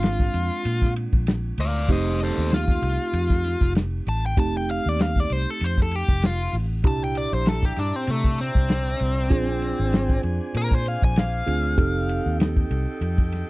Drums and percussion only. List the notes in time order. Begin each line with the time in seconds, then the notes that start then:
0.03 snare, ride bell
0.20 kick, snare
0.34 ride bell
0.65 ride bell
0.82 kick, snare
0.96 ride bell
1.13 kick
1.27 snare, ride bell
1.58 ride bell
1.89 kick, ride bell
2.20 ride bell
2.51 snare, ride bell
2.68 kick
2.82 ride bell
3.13 ride bell
3.30 kick, snare
3.44 snare, ride bell
3.61 kick
3.75 snare, ride bell
4.07 ride bell
4.37 kick, ride bell
4.69 ride bell
4.99 snare, ride bell
5.16 kick, snare
5.30 ride bell
5.60 ride bell
5.78 kick, snare
5.91 ride bell
6.08 kick
6.22 snare, ride bell
6.53 open hi-hat
6.84 kick, ride bell
7.15 ride bell
7.46 snare, ride bell
7.63 kick
7.76 snare, ride bell
8.07 ride bell
8.24 kick
8.38 ride bell
8.55 kick
8.69 snare, ride bell
9.00 ride bell
9.31 kick, ride bell
9.62 ride bell
9.92 snare, ride bell
10.09 kick
10.23 ride bell
10.54 ride bell
10.71 kick
10.86 ride bell
11.02 kick
11.16 snare, ride bell
11.47 ride bell
11.78 kick, ride bell
12.09 ride bell
12.40 snare, ride bell
12.57 kick
12.71 ride bell
13.01 ride bell
13.18 kick
13.32 snare, ride bell